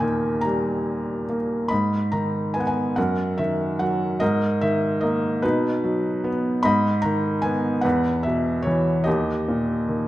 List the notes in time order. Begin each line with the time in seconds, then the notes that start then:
Already playing: D#2 A#2 A#4 G5
0.00 D#3 G#5
0.41 A#5
0.45 G3
1.29 A#3
1.68 G#2 D#5 B5
2.12 D#3 A#5
2.54 B3 G#5
2.60 F#5
2.67 G#5
2.96 F#2 A#4 F#5
3.38 D#3 E5
3.79 F#3 F#5
4.20 G#2 A#4 D#5
4.61 D#3 E5
5.01 A#3 D#5
5.42 B2 D#4 B4
5.84 F#3
6.24 B3
6.63 G#2 D#5 B5
7.02 D#3 A#5
7.42 B3 G#5
7.81 E2 B4 F#5
8.23 B2 E5
8.62 C#5
8.67 E3
9.04 D#2 G4 D#5
9.48 A#2
9.88 D#3